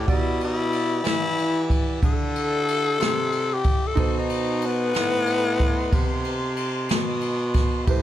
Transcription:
Already playing: G4 D5
0.06 B2 E4 G4 D5 E5 F#5, kick, ride
0.12 E4
0.41 E4, ride
0.73 ride
1.03 E3, snare, ride
1.08 E4
1.38 ride
1.70 kick, ride
2.03 D3 A4, kick, ride
2.36 ride
2.68 ride
3.00 C3, snare, ride
3.32 ride
3.54 G4
3.64 kick, ride
3.87 A4
3.93 B2 D#4 C5 D#5 A5 C6, kick, ride
3.98 A4 C5
4.19 D#4
4.30 ride
4.61 ride
4.66 B3
4.94 A2, snare, ride
5.26 ride
5.60 kick, ride
5.92 C3, kick, ride
6.24 ride
6.57 ride
6.89 B2, snare, ride
7.21 ride
7.54 kick, snare, ride
7.84 A2 G4 B4 E5 B5, kick, ride
7.89 B4 C5

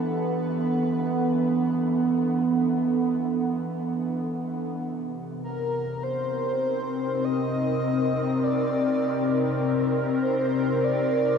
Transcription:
Already playing: E3 B3 D4 A4 F#5
0.00 B4
4.83 C3
5.44 A#4
5.54 A#4
5.79 C4
6.03 C5
6.16 D#4
7.25 D#5
8.44 D5
10.22 C5
10.84 D5

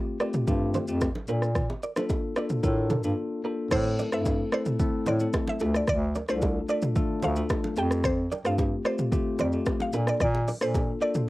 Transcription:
Already playing: A3 C4 F4 G4
0.20 A3 C4 F4 G4 A#4 D5, cross-stick, shaker
0.33 mid tom, shaker
0.47 G2 A3 C4 F4 G4, kick, low conga, shaker
0.74 A4 C5, low bongo, low conga, shaker
0.87 F2 A3 C4 F4 G4, shaker
1.01 kick, cross-stick, high bongo, shaker
1.15 low bongo
1.27 A#2 A#3 D4 F4 A4 A#4, shaker
1.42 cross-stick, shaker
1.55 kick, cross-stick, low conga, shaker
1.70 high bongo
1.83 A#4 D5, shaker
1.96 A#3 D4 F4 A4 C5, cross-stick, low bongo, shaker
2.09 kick, high bongo, shaker
2.36 A#3 D4 F4 A4 A#4 D5, cross-stick, shaker
2.49 mid tom, shaker
2.63 A2 D4 F4 A4 A#4, kick, low conga, shaker
2.90 F4 A4, mid tom, low bongo, low conga, shaker
3.03 G2 A#3 D4 F4 A4, shaker
3.44 A#3 D4 F4 G4 A4 A#4
3.71 A2 A3 C4 E4 A4 C5, kick, cross-stick, crash, low conga, shaker
3.99 A#4 D5, low bongo, shaker
4.13 G2 A3 C4 E4 A4 C5 E5, cross-stick, shaker
4.26 kick, high bongo, shaker
4.52 A3 C4 E4 A4 A#4 C5 D5, cross-stick, shaker
4.66 mid tom, shaker
4.80 A3 C4 E4 A4, kick, low conga, shaker
5.06 A2 A4 C5 D5, low bongo, low conga, shaker
5.20 A3 C4 E4 A4, shaker
5.33 kick, cross-stick, high bongo, shaker
5.48 E5, low bongo
5.60 D2 A3 D4 F4 A4, high bongo, shaker
5.74 D5, cross-stick, shaker
5.87 D2 D5, kick, cross-stick, low conga, shaker
6.15 A#4 D5, low bongo, shaker
6.29 C2 A3 D4 F4 A4 C5, cross-stick, shaker
6.42 kick, high bongo, shaker
6.69 A3 D4 F4 A4 A#4 D5, shaker
6.82 mid tom, shaker
6.96 A3 D4 F4 A4, kick, low conga, shaker
7.23 D2 A4 C5 F5, low bongo, low conga, shaker
7.36 A3 D4 F4 A4, shaker
7.49 kick, cross-stick, high bongo, shaker
7.64 low bongo
7.76 F2 A3 C4 F4 G4 A4 G5, high bongo, shaker
7.91 cross-stick, shaker
8.04 C5, kick, cross-stick, low conga, shaker
8.32 A#4 D5, low bongo, shaker
8.45 G2 A3 C4 F4 G4 A4 C5 F5, cross-stick, shaker
8.58 kick, high bongo, shaker
8.85 A3 C4 F4 G4 A#4 C5 D5, cross-stick, shaker
8.98 mid tom, shaker
9.12 A3 C4 F4 G4, kick, low conga, shaker
9.39 F2 A4 C5 D5, low bongo, low conga, shaker
9.52 A3 C4 F4 G4, shaker
9.66 kick, cross-stick, high bongo, shaker
9.80 F5, low bongo
9.92 A#2 A#3 D4 F4 A4 A#4, high bongo, shaker
10.07 D5, cross-stick, shaker
10.20 A#2 D5, kick, cross-stick, low conga, shaker
10.35 high bongo
10.48 A#4 D5, open hi-hat, low bongo, shaker
10.61 A#2 A#3 D4 F4 A4 C5, cross-stick, shaker
10.75 kick, high bongo, shaker
11.01 A#3 D4 F4 A4 A#4 D5, shaker
11.15 mid tom, shaker

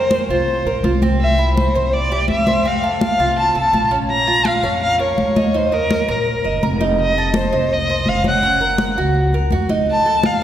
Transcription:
Already playing: F2 A#4 C5
0.11 high conga
0.29 C2 F4 C5
0.48 high conga
0.65 A#1 A#4, high conga
0.83 C2 F4, high conga
1.02 C4, high conga
1.20 E5, high conga
1.39 E4, high conga
1.57 C5, high conga
1.74 C2 C5, high conga
1.93 D5, high conga
2.10 G4, high conga
2.28 F2 E5, high conga
2.47 C5, high conga
2.64 C4 F5, high conga
2.83 A4, high conga
3.01 F5, high conga
3.18 C2 F4
3.38 A5, high conga
3.55 C2 A4 A5, high conga
3.73 A#1 F4, high conga
3.91 C#4
4.10 A#5, high conga
4.27 F4, high conga
4.45 F5, high conga
4.63 F2 C#5, high conga
4.82 F5, high conga
5.00 A#4 C#5, high conga
5.18 D#2, high conga
5.36 D#5, high conga
5.54 D#4 C5, high conga
5.72 A#4 D#5, high conga
5.91 high conga
6.08 A#1 A#4
6.27 high conga
6.45 F#1 D#5, high conga
6.63 F1 A#4, high conga
6.81 D#4, high conga
6.99 D#5, high conga
7.16 A4, high conga
7.34 C5, high conga
7.52 C2 D#5, high conga
7.71 D#5, high conga
7.89 C5, high conga
8.06 F#1 F5, high conga
8.24 C#5 F#5, high conga
8.43 C#4, high conga
8.61 A#4, high conga
8.78 high conga
8.97 C#2 F#4
9.15 high conga
9.33 A#4, high conga
9.51 F2 F#4, high conga
9.69 D#4, high conga
9.86 high conga
9.90 A5
10.05 A4, high conga
10.23 F5, high conga

